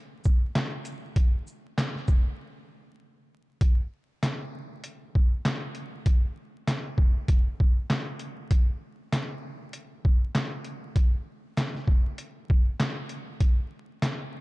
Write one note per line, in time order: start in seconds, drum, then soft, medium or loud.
0.24 kick medium
0.24 shaker medium
0.55 snare loud
0.55 clap medium
0.55 closed hi-hat medium
0.85 closed hi-hat medium
0.85 shaker medium
1.16 kick loud
1.16 closed hi-hat loud
1.47 shaker medium
1.78 snare loud
1.78 clap medium
1.78 closed hi-hat medium
1.95 snare soft
2.08 kick loud
2.08 shaker medium
3.61 kick loud
3.61 closed hi-hat loud
4.23 snare loud
4.23 clap medium
4.23 closed hi-hat medium
4.84 closed hi-hat medium
5.15 kick medium
5.45 snare loud
5.45 clap medium
5.45 closed hi-hat medium
5.75 closed hi-hat medium
6.06 kick loud
6.06 closed hi-hat loud
6.68 snare loud
6.68 clap medium
6.68 closed hi-hat medium
6.98 kick loud
7.28 kick loud
7.28 closed hi-hat medium
7.60 kick medium
7.90 snare loud
7.90 clap medium
7.90 closed hi-hat medium
8.19 closed hi-hat medium
8.51 kick loud
8.51 closed hi-hat loud
9.13 snare loud
9.13 clap medium
9.13 closed hi-hat medium
9.73 closed hi-hat medium
10.05 kick medium
10.35 snare loud
10.35 clap medium
10.35 closed hi-hat medium
10.64 closed hi-hat medium
10.96 kick loud
10.96 closed hi-hat loud
11.57 snare loud
11.57 clap medium
11.57 closed hi-hat medium
11.75 snare soft
11.88 kick medium
12.18 closed hi-hat medium
12.50 kick medium
12.80 snare loud
12.80 clap medium
12.80 closed hi-hat medium
13.09 closed hi-hat medium
13.40 kick loud
13.40 closed hi-hat loud
14.02 snare loud
14.02 clap medium
14.02 closed hi-hat medium